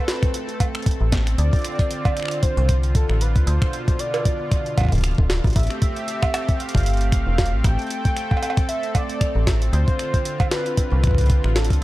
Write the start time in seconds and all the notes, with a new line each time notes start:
Already playing: A3 C4 A4 B4
0.08 snare, closed hi-hat
0.23 finger snap, kick, closed hi-hat
0.34 closed hi-hat
0.49 closed hi-hat
0.60 kick, closed hi-hat, cowbell
0.75 finger snap, closed hi-hat
0.82 closed hi-hat
0.86 kick, closed hi-hat
0.91 closed hi-hat
1.01 A1
1.12 kick, snare, closed hi-hat
1.27 finger snap, closed hi-hat
1.38 D2 D3 C4 F4 D5, closed hi-hat
1.53 kick, closed hi-hat
1.56 closed hi-hat
1.59 closed hi-hat
1.62 finger snap, closed hi-hat
1.64 closed hi-hat
1.68 closed hi-hat
1.72 closed hi-hat
1.75 kick, closed hi-hat
1.79 closed hi-hat
1.91 closed hi-hat
2.05 kick, closed hi-hat, cowbell
2.17 finger snap, closed hi-hat
2.20 finger snap
2.22 finger snap
2.25 finger snap
2.28 finger snap, closed hi-hat
2.43 C5, kick, closed hi-hat
2.57 C2, closed hi-hat
2.69 finger snap, kick, closed hi-hat
2.83 closed hi-hat
2.95 A4, kick, closed hi-hat
3.09 A1, finger snap
3.21 B4, closed hi-hat
3.36 D2, kick, closed hi-hat
3.47 D2 B2 C5, closed hi-hat
3.62 finger snap, kick, closed hi-hat
3.73 closed hi-hat
3.88 kick, closed hi-hat
3.99 D5, closed hi-hat
4.14 finger snap, closed hi-hat, cowbell
4.25 kick, closed hi-hat
4.51 finger snap, kick, closed hi-hat
4.66 closed hi-hat
4.78 kick, closed hi-hat, cowbell
4.80 kick, cowbell
4.83 kick, cowbell
4.86 kick, cowbell
4.89 D1, kick, closed hi-hat, cowbell
4.95 kick, closed hi-hat
4.98 kick, closed hi-hat
5.01 finger snap, kick, closed hi-hat
5.04 closed hi-hat
5.07 closed hi-hat
5.11 closed hi-hat
5.15 D1, kick, closed hi-hat
5.30 snare, closed hi-hat
5.44 A1, kick, closed hi-hat
5.47 closed hi-hat
5.50 closed hi-hat
5.53 E5, closed hi-hat
5.56 A1 A3 C4 G4, kick, closed hi-hat
5.59 closed hi-hat
5.63 closed hi-hat
5.67 finger snap, closed hi-hat
5.70 closed hi-hat
5.82 kick, closed hi-hat
5.96 closed hi-hat
6.08 closed hi-hat
6.23 finger snap, kick, closed hi-hat, cowbell
6.34 snare, closed hi-hat
6.49 kick, closed hi-hat
6.60 F5, closed hi-hat
6.69 closed hi-hat
6.75 G1, finger snap, kick, closed hi-hat
6.77 closed hi-hat
6.80 closed hi-hat
6.83 closed hi-hat
6.86 closed hi-hat
6.90 closed hi-hat
6.94 closed hi-hat
6.97 closed hi-hat
7.01 closed hi-hat
7.12 F5, finger snap, kick, closed hi-hat
7.27 E1
7.38 kick, snare, closed hi-hat
7.46 closed hi-hat
7.53 A1
7.64 A1 A4 G5, finger snap, kick, closed hi-hat
7.79 closed hi-hat
7.82 closed hi-hat
7.87 closed hi-hat
7.90 closed hi-hat
8.05 kick, closed hi-hat
8.17 finger snap, closed hi-hat
8.31 kick, cowbell
8.37 cowbell
8.43 closed hi-hat, cowbell
8.50 cowbell
8.57 finger snap, kick, closed hi-hat
8.69 E5, closed hi-hat
8.83 closed hi-hat
8.95 D5, kick, closed hi-hat, cowbell
9.10 closed hi-hat
9.21 finger snap, kick, closed hi-hat
9.36 A1
9.47 kick, snare, closed hi-hat
9.62 closed hi-hat
9.73 D2 D3 F4 C5, closed hi-hat
9.88 kick, closed hi-hat
9.99 finger snap, closed hi-hat
10.14 kick, closed hi-hat
10.25 closed hi-hat
10.40 kick, closed hi-hat, cowbell
10.51 B4, finger snap, snare, closed hi-hat
10.66 closed hi-hat
10.77 kick, closed hi-hat
10.92 C2
11.04 finger snap, kick, closed hi-hat
11.07 kick
11.11 kick
11.15 kick, closed hi-hat
11.18 kick, closed hi-hat
11.21 kick
11.24 kick, closed hi-hat
11.27 kick, closed hi-hat
11.30 kick
11.44 A1, finger snap
11.56 A4, snare, closed hi-hat
11.64 closed hi-hat
11.70 D2, kick, closed hi-hat
11.73 closed hi-hat